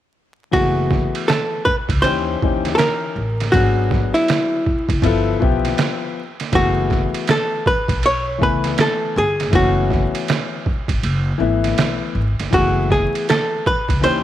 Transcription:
0.51 F#1 E3 A3 B3 F#4 G#4, kick, ride
0.91 kick, snare
1.15 ride
1.28 A4, snare, hi-hat pedal, ride
1.65 B4, kick
1.88 C#2, kick, ride
2.02 D#2 E3 C#4 D#4 G4 C5, ride
2.42 D#2 E3 C#4 D#4 G4, kick
2.65 snare, ride
2.75 A4 A#4, hi-hat pedal, ride
2.79 snare
3.16 A1
3.40 snare, ride
3.52 G#1 F#3 B3 D4 F#4, kick, ride
3.56 G#4
3.91 kick, snare
4.14 E4, ride
4.28 snare, hi-hat pedal, ride
4.66 kick
4.89 F#1, kick, ride
5.02 G1 F3 B3 E4, kick, ride
5.06 A4
5.40 B1 F3 B3 E4 G4, kick
5.65 snare, ride
5.78 snare, hi-hat pedal, ride
6.40 snare, ride
6.52 F#1 E3 A3 B3 F#4 G#4, kick, ride
6.90 kick, snare
7.14 ride
7.27 A4, snare, hi-hat pedal, ride
7.66 B4, kick
7.88 B1, kick, ride
8.03 C#5, ride
8.38 C#2 E3 A3 B3 G#5, kick
8.43 B4
8.64 snare, ride
8.78 A4, snare, hi-hat pedal, ride
9.16 G1 G#4
9.40 snare, ride
9.51 F#1 E3 A3 B3 C#4, kick, ride
9.55 F#4
9.90 kick, snare
10.15 ride
10.28 snare, hi-hat pedal, ride
10.66 kick
10.88 G#1, kick, ride
11.03 F#1, ride
11.38 G#1 E3 A3 B3 E4
11.64 snare, ride
11.77 B1, snare, hi-hat pedal, ride
12.15 G#1
12.40 G1, snare, ride
12.51 F#1 E3 A3 B3 F#4, kick, ride
12.55 G#4
12.90 G#4, kick, snare
13.15 ride
13.29 A4, snare, hi-hat pedal, ride
13.66 B4, kick
13.88 C#2, kick, ride
14.01 D#2 E3 C#4 D#4 C5, ride
14.05 G4

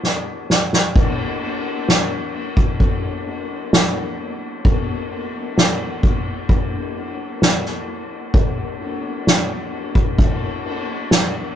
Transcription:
0.03 snare
0.50 snare
0.73 snare
0.95 kick, ride
1.42 ride
1.87 snare, ride
2.34 ride
2.57 kick
2.80 kick, ride
3.27 ride
3.73 snare, ride
4.19 ride
4.65 kick, ride
5.11 ride
5.56 snare, ride
6.03 kick, ride
6.49 kick, ride
6.73 ride
6.95 ride
7.42 snare, ride
7.65 snare
7.88 ride
8.34 kick, ride
8.81 ride
9.26 snare, ride
9.72 ride
9.95 kick
10.18 kick, ride
10.65 ride
11.11 snare, ride

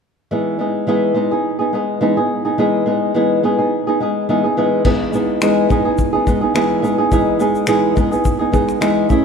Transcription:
0.31 E3 G#3 B3 D#4 G#4
0.59 G#3 B3 D#4 G#4
0.87 E3 G#3 B3 D#4 G#4
1.14 G#3 B3 D#4 G#4
1.31 B3 D#4 G#4
1.59 B3 D#4 G#4
1.73 G#3 B3 D#4 G#4
2.01 E3 G#3 B3 D#4 G#4
2.17 B3 D#4 G#4
2.45 B3 D#4 G#4
2.58 E3 G#3 B3 D#4 G#4
2.86 G#3 B3 D#4 G#4
3.14 E3 G#3 B3 D#4 G#4
3.43 G#3 B3 D#4 G#4
3.59 B3 D#4 G#4
3.87 B3 D#4 G#4
4.00 G#3 B3 D#4 G#4
4.29 E3 G#3 B3 D#4 G#4
4.44 B3 D#4 G#4
4.57 E3 G#3 B3 D#4 G#4
4.84 E3 G#3 B3 D#4 G#4, kick, crash
5.13 G#3 B3 D#4 G#4, shaker
5.41 E3 G#3 B3 D#4 G#4, finger snap, shaker
5.69 G#3 B3 D#4 G#4, kick, shaker
5.85 B3 D#4 G#4
5.98 kick, shaker
6.13 B3 D#4 G#4
6.27 G#3 B3 D#4 G#4, kick, shaker
6.41 B3 D#4 G#4
6.54 E3 G#3 B3 D#4 G#4, finger snap, shaker
6.82 G#3 B3 D#4 G#4, shaker
6.98 B3 D#4 G#4
7.12 E3 G#3 B3 D#4 G#4, kick, shaker
7.39 G#3 B3 D#4 G#4, shaker
7.55 shaker
7.67 E3 G#3 B3 D#4 G#4, finger snap, shaker
7.95 G#3 B3 D#4 G#4, kick, shaker
8.11 B3 D#4 G#4, shaker
8.25 kick, shaker
8.39 B3 D#4 G#4
8.52 G#3 B3 D#4 G#4, kick, shaker
8.69 finger snap, shaker
8.80 E3 G#3 B3 D#4 G#4, finger snap, shaker
9.10 A3 C#4 E4 G#4, kick, shaker

